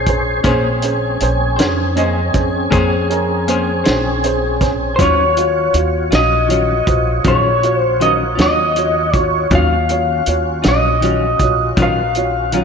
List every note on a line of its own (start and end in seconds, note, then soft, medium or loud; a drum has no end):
0.00 0.41 A#1 medium
0.00 0.41 C#4 medium
0.00 0.41 G#4 medium
0.00 0.41 C5 medium
0.06 0.36 C#4 medium
0.06 0.36 G#4 medium
0.06 0.36 C5 medium
0.06 kick medium
0.06 closed hi-hat medium
0.43 1.16 A#1 medium
0.43 0.67 A#3 medium
0.43 4.94 C4 medium
0.43 0.67 C#4 medium
0.43 4.94 C#4 medium
0.43 0.74 C#4 medium
0.43 4.95 G#4 medium
0.43 0.68 G#4 medium
0.43 0.74 G#4 medium
0.43 0.68 C5 medium
0.43 0.74 C5 medium
0.43 kick medium
0.43 closed hi-hat medium
0.82 1.11 C#4 medium
0.82 1.12 G#4 medium
0.82 1.12 C5 medium
0.82 closed hi-hat medium
1.20 1.56 A#1 medium
1.20 1.49 C#4 medium
1.20 1.50 G#4 medium
1.20 1.50 C5 medium
1.20 closed hi-hat medium
1.56 2.31 F2 medium
1.56 1.87 C#4 medium
1.56 1.87 G#4 medium
1.56 1.82 G#4 soft
1.56 1.80 C5 medium
1.56 1.87 C5 medium
1.56 snare loud
1.56 closed hi-hat medium
1.61 1.82 C#4 soft
1.95 2.19 A#3 medium
1.95 2.24 C#4 medium
1.95 2.20 C#4 medium
1.95 2.25 G#4 medium
1.95 2.20 G#4 medium
1.95 2.20 C5 medium
1.95 2.25 D#5 medium
1.95 closed hi-hat soft
2.33 2.69 F2 medium
2.33 2.62 C#4 medium
2.33 2.63 G#4 medium
2.33 2.63 C5 medium
2.33 kick medium
2.33 closed hi-hat soft
2.70 3.82 F2 medium
2.70 2.94 A#3 medium
2.70 2.94 C#4 medium
2.70 3.00 C#4 medium
2.70 2.95 G#4 loud
2.70 3.01 G#4 soft
2.70 2.95 C5 medium
2.70 3.01 C5 medium
2.70 kick loud
2.70 closed hi-hat medium
3.10 3.38 C#4 medium
3.10 3.38 G#4 medium
3.10 3.39 A#4 medium
3.10 closed hi-hat soft
3.47 3.70 A#3 medium
3.47 3.76 C#4 medium
3.47 3.71 C#4 medium
3.47 3.76 G#4 medium
3.47 3.72 G#4 medium
3.47 3.77 C5 medium
3.47 3.72 C5 medium
3.47 closed hi-hat medium
3.84 4.96 A#1 medium
3.84 4.14 C#4 medium
3.84 4.09 C#4 soft
3.84 4.14 G#4 medium
3.84 4.09 G#4 soft
3.84 4.07 C5 medium
3.84 4.15 C5 medium
3.84 snare loud
3.84 closed hi-hat medium
4.24 4.52 C#4 medium
4.24 4.52 G#4 soft
4.24 4.53 C5 medium
4.24 closed hi-hat medium
4.60 4.89 C#4 medium
4.60 4.89 G#4 medium
4.60 4.90 C5 medium
4.60 kick medium
4.60 snare soft
4.60 closed hi-hat medium
4.96 5.70 D#2 medium
4.96 5.22 D#3 medium
4.96 5.27 F4 medium
4.96 9.47 F4 medium
4.96 9.47 F#4 medium
4.96 5.27 F#4 medium
4.96 5.01 C5 medium
4.96 9.47 C#5 medium
4.96 kick medium
4.96 closed hi-hat medium
5.00 5.22 F#3 medium
5.00 5.23 C#4 medium
5.00 5.23 F4 medium
5.00 5.28 C#5 medium
5.00 5.72 C#5 loud
5.37 5.65 F4 medium
5.37 5.65 F#4 soft
5.37 5.66 C#5 medium
5.37 closed hi-hat medium
5.74 6.09 D#2 medium
5.74 6.03 F4 medium
5.74 6.03 F#4 soft
5.74 6.03 C#5 medium
5.74 closed hi-hat medium
6.10 6.83 A#1 medium
6.10 6.35 C#4 soft
6.10 6.40 F4 soft
6.10 6.34 F4 medium
6.10 6.40 F#4 soft
6.10 6.41 C#5 medium
6.10 snare loud
6.10 closed hi-hat medium
6.15 6.36 F#3 soft
6.15 7.28 D#5 medium
6.48 6.72 D#3 medium
6.48 6.72 F#3 soft
6.48 6.73 C#4 medium
6.48 6.77 F4 medium
6.48 6.73 F4 soft
6.48 6.78 F#4 medium
6.48 6.78 C#5 medium
6.48 closed hi-hat medium
6.87 7.22 A#1 medium
6.87 7.16 F4 medium
6.87 7.16 F#4 medium
6.87 7.16 C5 medium
6.87 kick medium
6.87 closed hi-hat medium
7.24 8.34 A#1 medium
7.24 7.47 D#3 medium
7.24 7.48 F#3 medium
7.24 7.48 C#4 medium
7.24 7.53 F4 soft
7.24 7.49 F4 medium
7.24 7.54 F#4 soft
7.24 7.54 G#4 medium
7.24 7.77 C#5 medium
7.24 kick loud
7.24 closed hi-hat medium
7.63 7.91 F4 medium
7.63 7.92 F#4 soft
7.63 7.92 C#5 medium
7.63 closed hi-hat medium
7.77 7.98 C5 medium
8.00 8.23 D#3 medium
8.00 8.23 F#3 medium
8.00 8.24 C#4 medium
8.00 8.29 F4 soft
8.00 8.25 F4 medium
8.00 8.29 F#4 soft
8.00 8.30 A#4 medium
8.00 8.12 D#5 medium
8.00 closed hi-hat medium
8.35 9.47 D#2 medium
8.35 8.61 F#3 soft
8.35 8.60 C#4 soft
8.35 8.59 F4 soft
8.35 8.67 F4 medium
8.35 8.67 F#4 soft
8.35 closed hi-hat medium
8.39 8.67 C#5 medium
8.39 9.16 D#5 medium
8.39 snare medium
8.76 9.04 F4 soft
8.76 9.05 F#4 soft
8.76 9.05 C#5 soft
8.76 closed hi-hat medium
9.14 9.42 F4 medium
9.14 9.43 F#4 soft
9.14 9.49 C#5 medium
9.14 9.43 C#5 medium
9.14 kick medium
9.14 closed hi-hat medium
9.50 10.23 D#2 loud
9.50 9.74 D#3 medium
9.50 9.74 F#3 medium
9.50 12.64 C#4 medium
9.50 9.74 C#4 medium
9.50 12.64 F4 medium
9.50 9.80 F4 medium
9.50 9.75 F4 medium
9.50 12.64 F#4 medium
9.50 9.81 F#4 medium
9.50 9.81 C#5 medium
9.50 kick loud
9.50 closed hi-hat medium
9.55 10.68 F5 medium
9.89 10.18 F4 medium
9.89 10.18 F#4 soft
9.89 10.19 C#5 medium
9.89 closed hi-hat medium
10.26 10.61 D#2 medium
10.26 10.55 F4 soft
10.26 10.56 F#4 soft
10.26 10.56 C#5 medium
10.26 closed hi-hat medium
10.62 11.36 A#1 medium
10.62 10.87 F#3 soft
10.62 10.87 C#4 soft
10.62 10.86 F4 medium
10.62 10.94 F4 medium
10.62 snare loud
10.62 closed hi-hat medium
10.67 10.94 F#4 soft
10.67 10.94 C#5 medium
10.67 11.75 D#5 medium
11.01 11.24 D#3 medium
11.01 11.25 F#3 medium
11.01 11.25 C#4 medium
11.01 11.31 F4 medium
11.01 11.26 F4 medium
11.01 11.31 F#4 soft
11.01 11.32 C#5 medium
11.01 closed hi-hat medium
11.39 11.74 A#1 medium
11.39 11.69 F4 soft
11.39 11.69 F#4 soft
11.39 11.69 C#5 medium
11.39 kick medium
11.39 closed hi-hat medium
11.77 12.64 A#1 medium
11.77 12.00 D#3 medium
11.77 12.00 F#3 medium
11.77 12.00 C#4 medium
11.77 12.06 F4 soft
11.77 12.01 F4 medium
11.77 12.06 F#4 soft
11.77 12.07 A#4 soft
11.77 kick loud
11.77 closed hi-hat medium
11.83 12.51 F5 medium
12.15 12.44 F4 medium
12.15 12.44 F#4 soft
12.15 12.45 C#5 medium
12.15 closed hi-hat medium
12.52 12.64 D#3 medium
12.52 12.64 F#3 medium
12.52 12.64 C#4 medium
12.52 12.64 F4 medium
12.52 12.64 F#4 medium
12.52 12.64 C#5 medium
12.52 closed hi-hat medium